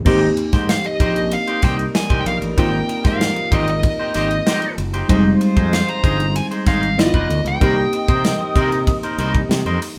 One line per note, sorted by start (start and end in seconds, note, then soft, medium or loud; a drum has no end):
0.05 0.29 G#1 loud
0.05 2.53 A#3 medium
0.05 2.54 C4 medium
0.05 0.27 D#4 loud
0.05 2.54 D#4 medium
0.05 0.22 G4 loud
0.05 2.54 G4 medium
0.05 0.21 C5 loud
0.05 kick loud
0.05 crash loud
0.22 muted clean electric guitar stroke soft
0.37 muted clean electric guitar stroke soft
0.37 ride medium
0.53 0.76 G#2 loud
0.53 0.71 D#4 soft
0.53 0.70 G4 medium
0.53 0.70 C5 medium
0.53 kick loud
0.53 snare soft
0.53 ride soft
0.69 0.86 F5 medium
0.69 snare loud
0.69 ride medium
0.84 1.34 D#5 medium
0.84 muted clean electric guitar stroke soft
0.84 ride soft
1.00 1.35 A#1 medium
1.00 1.22 D#4 medium
1.00 1.16 G4 medium
1.00 1.15 C5 medium
1.00 kick loud
1.00 ride medium
1.16 muted clean electric guitar stroke medium
1.16 ride soft
1.31 4.74 G3 medium
1.31 4.74 D#4 medium
1.31 4.74 A#4 medium
1.31 1.64 F5 loud
1.31 muted clean electric guitar stroke soft
1.31 ride medium
1.47 1.62 D#4 medium
1.47 1.62 G4 medium
1.47 1.63 C5 medium
1.47 ride soft
1.62 1.86 C2 medium
1.62 1.85 D#4 medium
1.62 1.79 G4 medium
1.62 1.78 C5 medium
1.62 1.73 G5 loud
1.62 kick loud
1.62 snare soft
1.62 ride medium
1.79 muted clean electric guitar stroke soft
1.79 ride soft
1.95 2.20 G#5 loud
1.95 muted clean electric guitar stroke soft
1.95 snare loud
1.95 ride medium
2.10 2.22 C2 medium
2.10 2.25 D#4 medium
2.10 2.25 G4 medium
2.10 2.25 C5 medium
2.10 kick loud
2.10 ride soft
2.21 2.27 G5 medium
2.26 2.38 A#1 medium
2.26 2.36 F5 medium
2.26 muted clean electric guitar stroke soft
2.26 ride medium
2.42 2.54 A1 medium
2.42 muted clean electric guitar stroke soft
2.42 ride soft
2.56 2.81 G#1 medium
2.56 5.05 A#3 medium
2.56 5.05 C4 medium
2.56 2.79 D#4 medium
2.56 5.06 D#4 medium
2.56 5.06 F4 medium
2.56 2.72 G4 medium
2.56 2.72 C5 loud
2.56 3.03 G5 loud
2.56 kick loud
2.56 ride medium
2.73 muted clean electric guitar stroke soft
2.89 muted clean electric guitar stroke soft
2.89 ride medium
3.04 3.28 G#2 loud
3.04 3.22 D#4 medium
3.04 3.22 G4 medium
3.04 3.21 C5 medium
3.04 3.55 F5 loud
3.04 kick loud
3.04 snare soft
3.04 ride soft
3.21 snare loud
3.21 ride medium
3.36 muted clean electric guitar stroke soft
3.36 ride soft
3.52 3.87 G#1 loud
3.52 3.73 D#4 medium
3.52 3.67 G4 medium
3.52 3.67 C5 medium
3.52 3.69 D#5 medium
3.52 kick loud
3.52 ride medium
3.68 4.75 D#5 medium
3.68 muted clean electric guitar stroke medium
3.68 ride soft
3.83 muted clean electric guitar stroke soft
3.83 kick loud
3.83 ride medium
3.99 4.14 D#4 medium
3.99 4.14 G4 medium
3.99 4.15 C5 medium
4.14 4.39 G#1 medium
4.14 4.36 D#4 medium
4.14 4.30 G4 medium
4.14 4.29 C5 loud
4.14 snare soft
4.14 ride medium
4.31 muted clean electric guitar stroke soft
4.31 ride soft
4.46 4.68 D#4 medium
4.46 4.62 G4 medium
4.46 4.61 C5 loud
4.46 snare loud
4.46 ride medium
4.62 muted clean electric guitar stroke soft
4.62 ride soft
4.78 5.01 F#1 medium
4.78 muted clean electric guitar stroke soft
4.78 ride medium
4.94 5.08 D#4 medium
4.94 5.09 G4 medium
4.94 5.09 C5 medium
4.94 ride soft
5.08 5.33 F1 loud
5.08 5.10 G3 medium
5.08 6.95 G3 medium
5.08 6.64 G#3 loud
5.08 6.94 C4 medium
5.08 5.31 D#4 medium
5.08 6.95 D#4 medium
5.08 6.64 F4 medium
5.08 5.25 G#4 medium
5.08 6.64 C5 loud
5.08 5.24 C5 medium
5.08 kick loud
5.08 ride medium
5.15 6.97 G#3 medium
5.25 muted clean electric guitar stroke soft
5.41 muted clean electric guitar stroke soft
5.41 ride medium
5.57 5.80 F2 loud
5.57 5.74 D#4 medium
5.57 5.74 G#4 medium
5.57 5.73 C5 medium
5.57 kick loud
5.57 ride soft
5.73 5.89 F5 medium
5.73 snare loud
5.73 ride medium
5.88 6.37 A#5 loud
5.88 muted clean electric guitar stroke medium
5.88 ride soft
6.04 6.39 G1 loud
6.04 6.25 D#4 medium
6.04 6.19 G#4 medium
6.04 6.19 C5 medium
6.04 kick loud
6.04 ride medium
6.20 muted clean electric guitar stroke soft
6.20 ride soft
6.35 6.44 G#5 loud
6.35 muted clean electric guitar stroke soft
6.35 ride medium
6.51 6.66 D#4 medium
6.51 6.66 G#4 medium
6.51 6.67 C5 medium
6.51 ride soft
6.66 6.98 G#1 medium
6.66 6.88 D#4 medium
6.66 6.83 G#4 medium
6.66 6.82 C5 medium
6.66 7.00 F5 medium
6.66 kick loud
6.66 snare soft
6.66 ride medium
6.83 muted clean electric guitar stroke soft
6.83 ride soft
6.98 7.10 G1 loud
6.98 7.61 B3 medium
6.98 7.29 B3 medium
6.98 7.61 D#4 medium
6.98 7.05 E4 medium
6.98 7.29 F4 medium
6.98 7.29 D5 medium
6.98 7.48 D#5 medium
6.98 muted clean electric guitar stroke soft
6.98 snare loud
6.98 ride medium
7.06 7.65 F4 medium
7.14 7.26 F1 medium
7.14 7.29 D#4 medium
7.14 7.29 F4 medium
7.14 7.30 B4 medium
7.14 kick medium
7.30 7.41 D2 loud
7.30 muted clean electric guitar stroke soft
7.30 ride medium
7.45 7.57 C#2 medium
7.45 8.69 G5 medium
7.45 muted clean electric guitar stroke soft
7.45 ride soft
7.60 7.85 C2 loud
7.60 9.98 A#3 medium
7.60 9.98 C4 medium
7.60 9.78 C4 medium
7.60 7.83 D#4 loud
7.60 9.98 D#4 medium
7.60 9.98 G4 medium
7.60 9.78 A#4 medium
7.60 7.77 A#4 loud
7.60 7.76 C5 medium
7.60 9.78 D#5 loud
7.60 kick loud
7.60 ride medium
7.77 muted clean electric guitar stroke soft
7.93 muted clean electric guitar stroke soft
7.93 ride medium
8.08 8.32 C3 loud
8.08 8.26 D#4 medium
8.08 8.26 A#4 medium
8.08 8.25 C5 medium
8.08 kick loud
8.08 ride soft
8.25 snare loud
8.25 ride medium
8.41 muted clean electric guitar stroke medium
8.56 8.91 C3 loud
8.56 8.77 D#4 medium
8.56 8.72 A#4 medium
8.56 8.71 C5 medium
8.56 kick loud
8.56 ride medium
8.72 muted clean electric guitar stroke soft
8.72 ride soft
8.87 muted clean electric guitar stroke soft
8.87 kick medium
8.87 ride medium
9.03 9.18 D#4 medium
9.03 9.18 A#4 medium
9.03 9.19 C5 medium
9.03 ride soft
9.18 9.42 C2 loud
9.18 9.40 D#4 medium
9.18 9.34 A#4 medium
9.18 9.33 C5 medium
9.18 ride medium
9.34 muted clean electric guitar stroke medium
9.34 kick medium
9.34 ride soft
9.49 9.61 C3 loud
9.49 muted clean electric guitar stroke soft
9.49 snare loud
9.49 ride medium
9.65 9.77 F2 medium
9.65 9.81 D#4 medium
9.65 9.81 A#4 medium
9.65 9.82 C5 medium
9.65 ride soft
9.82 muted clean electric guitar stroke medium
9.82 open hi-hat medium
9.82 ride medium